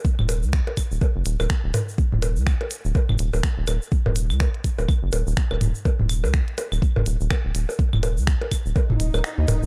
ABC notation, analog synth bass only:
X:1
M:4/4
L:1/16
Q:"Swing 16ths" 1/4=124
K:Ebm
V:1 name="Analog synth bass" clef=bass
z E,,,2 D,,2 z2 E,,, z G,,, E,,, E,,, z E,,, z2 | z E,,,2 D,,2 z2 E,,, z G,,, E,,, E,,, z E,,, E,,, z | z E,,,2 D,,2 z2 E,,, z G,,, E,,, E,,, z E,,, E,,, z | z E,,,2 D,,2 z2 E,,, z G,,, E,,, E,,, z E,,, E,,, z |
z E,,,2 D,,2 z2 E,,, z G,,, E,,, E,,, z E,, E,,, E,,, |]